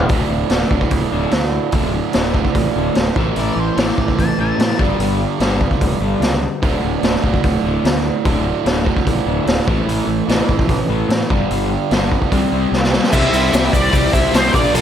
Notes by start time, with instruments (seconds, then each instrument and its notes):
0.09 fingered electric bass D1, overdriven electric guitar D2 A2 D3, kick, open hi-hat
0.29 fingered electric bass D1, overdriven electric guitar D2 A2
0.49 fingered electric bass D1, overdriven electric guitar D2 A2 D3, snare, open hi-hat
0.70 fingered electric bass D1, overdriven electric guitar D2 A2 D3, kick
0.81 kick
0.91 fingered electric bass D1, overdriven electric guitar D2 A2, kick, open hi-hat
1.11 fingered electric bass D1, overdriven electric guitar D2 A2 D3
1.31 overdriven electric guitar D2 A2, fingered electric bass D2, snare, open hi-hat
1.52 overdriven electric guitar D2 A2
1.72 fingered electric bass D1, overdriven electric guitar D2 A2 D3, kick, open hi-hat
1.93 overdriven electric guitar D2 A2
2.13 fingered electric bass D1, overdriven electric guitar D2 A2 D3, snare, open hi-hat
2.33 overdriven electric guitar D2 A2 D3, kick
2.45 kick
2.55 fingered electric bass A1, overdriven electric guitar D2 A2, kick, open hi-hat
2.76 fingered electric bass D1, overdriven electric guitar D2 A2 D3
2.95 fingered electric bass D1, overdriven electric guitar D2 A2, snare, open hi-hat
3.16 fingered electric bass A1, overdriven electric guitar A2 E3 A3, kick
3.36 fingered electric bass A1, overdriven electric guitar A2 E3 A3, lead electric guitar D5, open hi-hat
3.56 fingered electric bass A1, overdriven electric guitar A2 E3
3.60 lead electric guitar C5
3.77 fingered electric bass A1, overdriven electric guitar A2 E3 A3, lead electric guitar D5, snare, open hi-hat
3.98 fingered electric bass A1, overdriven electric guitar A2 E3, kick
4.08 kick
4.19 fingered electric bass A1, overdriven electric guitar A2 E3, lead electric guitar A5, kick, open hi-hat
4.38 fingered electric bass A1, overdriven electric guitar A2 E3 A3, lead electric guitar A5
4.58 fingered electric bass A2, overdriven electric guitar A2 E3, snare, open hi-hat
4.79 fingered electric bass G1, overdriven electric guitar G2 D3 G3, kick
4.99 fingered electric bass G1, overdriven electric guitar G2 D3 G3, open hi-hat
5.21 overdriven electric guitar G2 D3
5.40 fingered electric bass G1, overdriven electric guitar G2 D3 G3, snare, open hi-hat
5.61 overdriven electric guitar G2 D3, kick
5.71 kick
5.81 fingered electric bass D1, overdriven electric guitar G2 D3, kick, open hi-hat
6.00 fingered electric bass G1, overdriven electric guitar G2 D3 G3
6.20 fingered electric bass C#2, overdriven electric guitar G2 D3, snare, open hi-hat
6.43 overdriven electric guitar G2 D3
6.63 fingered electric bass D1, overdriven electric guitar D2 A2 D3, kick, open hi-hat
6.82 fingered electric bass D1, overdriven electric guitar D2 A2
7.03 fingered electric bass D1, overdriven electric guitar D2 A2 D3, snare, open hi-hat
7.15 snare
7.23 fingered electric bass D1, overdriven electric guitar D2 A2 D3, kick
7.34 kick
7.44 fingered electric bass D1, overdriven electric guitar D2 A2, kick, open hi-hat
7.64 fingered electric bass D1, overdriven electric guitar D2 A2 D3
7.84 fingered electric bass D2, overdriven electric guitar D2 A2, snare, open hi-hat
8.05 overdriven electric guitar D2 A2
8.25 fingered electric bass D1, overdriven electric guitar D2 A2 D3, kick, open hi-hat
8.46 overdriven electric guitar D2 A2
8.64 fingered electric bass D1, overdriven electric guitar D2 A2 D3, snare, open hi-hat
8.85 overdriven electric guitar D2 A2 D3, kick
8.97 kick
9.06 fingered electric bass A1, overdriven electric guitar D2 A2, kick, open hi-hat
9.26 fingered electric bass D1, overdriven electric guitar D2 A2 D3
9.46 fingered electric bass D1, overdriven electric guitar D2 A2, snare, open hi-hat
9.67 fingered electric bass A1, overdriven electric guitar A2 E3 A3, kick
9.87 fingered electric bass A1, overdriven electric guitar A2 E3 A3, open hi-hat
10.07 fingered electric bass A1, overdriven electric guitar A2 E3
10.28 fingered electric bass A1, overdriven electric guitar A2 E3 A3, snare, open hi-hat
10.48 fingered electric bass A1, overdriven electric guitar A2 E3, kick
10.59 kick
10.69 fingered electric bass A1, overdriven electric guitar A2 E3, kick, open hi-hat
10.89 fingered electric bass A1, overdriven electric guitar A2 E3 A3
11.09 fingered electric bass A2, overdriven electric guitar A2 E3, snare, open hi-hat
11.30 fingered electric bass G1, overdriven electric guitar G2 D3 G3, kick
11.50 fingered electric bass G1, overdriven electric guitar G2 D3 G3, open hi-hat
11.72 overdriven electric guitar G2 D3
11.91 fingered electric bass G1, overdriven electric guitar G2 D3 G3, snare, open hi-hat
12.12 overdriven electric guitar G2 D3, kick
12.22 kick
12.32 fingered electric bass C2, overdriven electric guitar C3 G3 C4, kick, open hi-hat
12.51 fingered electric bass C2, overdriven electric guitar C3 G3 C4
12.71 fingered electric bass C2, overdriven electric guitar C3 G3, snare
12.84 snare
12.91 overdriven electric guitar C3 G3 C4, snare
13.04 snare
13.12 fingered electric bass C2, overdriven electric guitar C3 G3 C4 E4 G4 C5, string machine G3 E4 C5, lead electric guitar E5, kick, crash, shaker
13.32 fingered electric bass C2, overdriven electric guitar C4 E4 G4 C5, open hi-hat, shaker
13.51 fingered electric bass C2, overdriven electric guitar C3 G3 C4 E4 G4 C5, snare, open hi-hat, shaker
13.72 fingered electric bass C2, overdriven electric guitar C4 E4 G4 C5, lead electric guitar D5, kick, open hi-hat, shaker
13.92 fingered electric bass C2, overdriven electric guitar C3 G3 C4 E4 G4 C5, kick, open hi-hat, shaker
14.13 fingered electric bass C2, overdriven electric guitar C4 E4 G4 C5, lead electric guitar E5, kick, open hi-hat, shaker
14.32 fingered electric bass C2, overdriven electric guitar C4 E4 G4 C5, lead electric guitar C5, snare, open hi-hat, shaker
14.53 fingered electric bass A#1, overdriven electric guitar A#2 F3 A#3 D4 F4 A#4, string machine F3 D4 A#4, lead electric guitar D5, kick, open hi-hat, shaker
14.73 fingered electric bass A#1, overdriven electric guitar A#2 F3 A#3 D4 F4 A#4, lead electric guitar A#4, open hi-hat, shaker